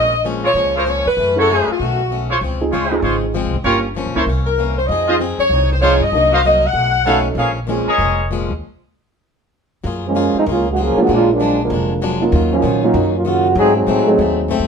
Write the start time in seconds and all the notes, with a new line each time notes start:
Already playing: A#1 A#2 F3 G#3 C#4 D#5
0.24 A#2 F3 G#3 C#4
0.44 F4 G#4 A#4 C#5
0.54 C#2 A#2 F3 G#3 C#4
0.75 F4 G#4 A#4 C5 C#5
0.86 A#2 F3 G#3 C#4 C#5
1.06 F2 B4
1.17 F#2 E3 A3 C#4
1.36 C#4 E4 F#4 G#4 A4 C#5
1.40 A4
1.49 F#2 E3 A3 C#4 G#4
1.68 F#4, muted upright bass stroke
1.79 B1 B2 D#3 A3 C#4
2.10 B2 D#3 A3 C#4
2.30 F4 G#4 C5 C#5
2.41 C#2 C#3 F3 G#3 C4
2.61 C4 D#4 F4 G#4
2.72 D2 C#3 F3 G#3 C4 F4 G#4 C5 C#5
2.91 C4 D#4 F4 G#4
3.02 G#1 C#3 F3 F4 G#4 C5 C#5
3.06 G#3 C4
3.34 C#3 F3 G#3 C4
3.44 C2
3.54 G#1
3.64 G1 G2 F3 A#3 C#4 F4 G4 A#4 C#5
3.95 G2 F3 A#3 C#4
4.06 A#1
4.15 C#2 A#3 C#4 E4 A#4 C5 C#5
4.26 C2 C3 E3 A#3 C#4
4.46 A#4
4.58 C3 E3 A#3 C#4
4.78 C5
4.87 F2 F3 C4 D#5
4.91 D#4 G#4
5.07 C4 D#4 F4 G#4 C5 D#5
5.19 F3 C4 D#4 G#4
5.38 F#2 C#5
5.50 C2 F3 C4
5.54 D#4 G#4
5.73 C5
5.81 F3 C4 D#4 F4 G#4 C5 C#5 F5
6.00 G2 D#5
6.12 C2 C3 F#3 A#3 D4 D#4 F#4 A#4
6.17 D#4
6.32 F#4 A#4 C5 D#5 F5
6.44 C3 F#3 A#3 D#4 D#5
6.67 F#5
6.73 B1 B2 D#3 A3 C#4
7.05 B2 D#3 A3 C#4 D#4 F#4 A4 B4 C#5 F5
7.35 A#1 A#2 F3 G#3 G#4 A#4 C#5 F5
7.39 C#4
7.67 A#2 F3 G#3 C4 C#4 F4 G#4
7.87 G#4 A#4 C#5 D#5, muted upright bass stroke
7.98 F1 A#2 F3 G#3 C#4
8.31 A#2 F3 G#3 C#4
8.50 D#2
9.84 F#2 F#3 A#3 F4 G#4
10.07 F3 G#3 A#3 C#4
10.15 F#3 A#3 F4 G#4
10.34 F3 G#3 C4, muted upright bass stroke
10.38 D#4
10.46 C#2 F#3 G#3 A#3 F4 G#4
10.50 C#4
10.70 C#3 G#3 A#3 F#4
10.76 F#3 A#3 F4 G#4
10.82 F3 A#3 C#4 G#4
10.96 F#3 G#3 A#3 D4 F4, muted upright bass stroke
11.02 C#3 G#3 A#3 F#4
11.07 A#1 A#2 F#3 G#3 D4
11.12 G#3 A#3 D4 F4
11.32 F3 G#3 A#3 D4
11.40 A#2 F#3 G#3 D4
11.62 D3 F3 G#3 A#3
11.70 F1 A#2 F#3 G#3 D4
12.02 A#2 F#3 G#3 D4
12.21 F#3 A#3 C#4 D#4 F4
12.32 D#2 D#3 F#3 C#4 F4
12.52 F3 F#3 A#3 C#4
12.62 A#2 D#3 F#3 C#4 F4
12.84 F#3 A#3 C#4 D#4 F4
12.94 F#2 D#3 F#3 C#4 F4
13.15 F#3 A#3 C#4 F4
13.25 C#3 D#3 F#3 A#3 C#4 F4 F#4
13.55 G#2 F#3 A3 C4 D#4 G#4
13.60 C4
13.76 F#3 C4 D#4
13.87 G#2 A2 F#3 A3 C4
14.07 F#3 A3 C4 D#4 G#4
14.18 D#2 G#2 F#3 A3 C4
14.48 G#2 F#3 A3 C4
14.59 F#2